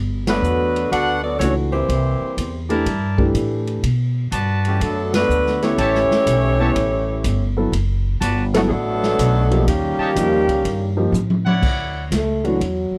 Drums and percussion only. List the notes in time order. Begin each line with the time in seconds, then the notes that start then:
0.27 snare, ride
0.44 hi-hat pedal
0.76 ride
0.92 kick, ride
1.40 kick, hi-hat pedal, ride
1.89 kick, ride
2.38 kick, hi-hat pedal, ride
2.70 ride
2.86 kick, ride
3.18 kick
3.35 kick, hi-hat pedal, ride
3.67 ride
3.83 kick, ride
4.32 kick, hi-hat pedal, ride
4.65 ride
4.81 kick, ride
5.14 snare, ride
5.30 hi-hat pedal
5.46 snare
5.62 snare, ride
5.78 kick, ride
5.95 snare
6.11 snare
6.27 kick, hi-hat pedal, ride
6.76 kick, ride
7.24 kick, hi-hat pedal, ride
7.73 kick, ride
8.21 kick, hi-hat pedal, ride
8.54 snare, ride
8.70 kick
9.03 snare
9.19 kick, hi-hat pedal, ride
9.51 ride
9.67 kick, ride
10.16 kick, hi-hat pedal, ride
10.49 ride
10.65 kick, ride
11.14 hi-hat pedal, high tom
11.30 high tom
11.46 high tom
11.63 kick, crash
12.12 kick, snare, hi-hat pedal, ride
12.45 ride
12.61 kick, ride